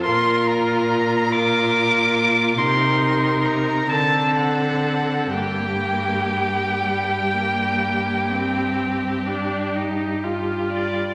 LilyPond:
<<
  \new Staff \with { instrumentName = "Violin" } { \time 12/8 \key g \minor \tempo 4. = 42 c'''8 bes''4 d'''4. c'''4 bes''8 a''8 fis''4 | g''1~ g''8 r4 d''8 | }
  \new Staff \with { instrumentName = "Violin" } { \time 12/8 \key g \minor bes'4. bes'4. bes'4. a'4. | g'1~ g'4.~ g'16 r16 | }
  \new Staff \with { instrumentName = "Viola" } { \time 12/8 \key g \minor f'4. f'4. ees'4. c'4. | bes4. g8 bes4 c'4 d'8 ees'8 f'4 | }
  \new Staff \with { instrumentName = "Cello" } { \clef bass \time 12/8 \key g \minor bes,2. c4. d4. | g,1~ g,4.~ g,16 r16 | }
>>